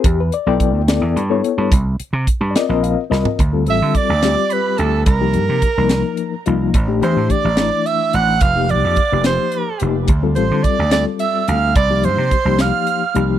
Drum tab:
HH |x-x-x-x-x-x-|x-x-x-x-x---|x-x-x-x-x-x-|x-x-x-x-x-x-|
SD |------o-----|------o---o-|------o-----|------o-----|
FT |------------|-----------o|------------|------------|
BD |o---o-------|o---o-------|o---o-------|o---o-------|

HH |x-x-x-x-x-x-|x-x-x-x-x-x-|x-x-x-x-x-x-|x-x-x-x-x-x-|
SD |------o-----|------o-----|------o-----|------o-----|
FT |------------|------------|------------|------------|
BD |o---o-------|o---o-------|o---o-------|o---o-------|